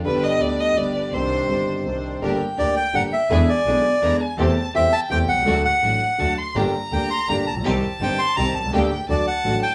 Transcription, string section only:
\new Staff \with { instrumentName = "String section" } { \time 3/4 \key c \minor \tempo 4 = 166 <d' g' b'>4 <d' g' b'>4 <d' g' b'>4 | <d' c''>4 <d' c''>4 <d' c''>4 | \key g \minor <d' g' bes'>8 r8 <d' g' bes'>8 r8 <d' g' bes'>8 r8 | <d' e' gis'>8 r8 <d' e' gis'>8 r8 <d' e' gis'>8 r8 |
<a c' g'>8 r8 <a c' g'>8 r8 <a c' g'>8 r8 | <a d' fis'>8 r8 <a d' fis'>8 r8 <a d' fis'>8 r8 | <bes d' g'>8 r8 <bes d' g'>8 r8 <bes d' g'>8 r8 | <c' ees' g'>8 r8 <c' ees' g'>8 r8 <c' ees' g'>8 r8 |
<bes d' g'>8 r8 <a d' fis'>8 r8 <a d' fis'>8 r8 | }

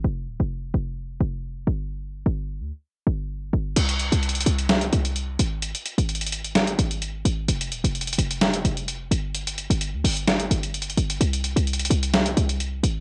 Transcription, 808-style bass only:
\new Staff \with { instrumentName = "808-style bass" } { \clef bass \time 4/4 \key g \phrygian \tempo 4 = 129 f,,8 ees,,16 f,,8. f,,4 f,,4 g,,8~ | g,,8. g,,8. d,16 r8. g,,4 g,,8 | c,8. c,8. c,4 c,4 aes,,8~ | aes,,16 r8 aes,,4.~ aes,,16 aes,,4 aes,,8 |
f,,8 ees,,16 f,,8. f,,4 f,,4 g,,8~ | g,,8. g,,8 d,16 g,,4 g,,4 g,,8 | c,8. c,8. c,4 c,4 aes,,8 | }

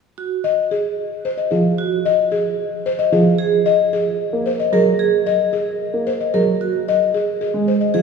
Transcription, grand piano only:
\new Staff \with { instrumentName = "Grand piano" } { \clef bass \time 3/4 \key ees \dorian \tempo 4 = 112 r2 r8. f16 | r2 r8. f16 | r2 bes16 r8 ges16 | r2 bes16 r8 ges16 |
r2 aes16 r8 f16 | }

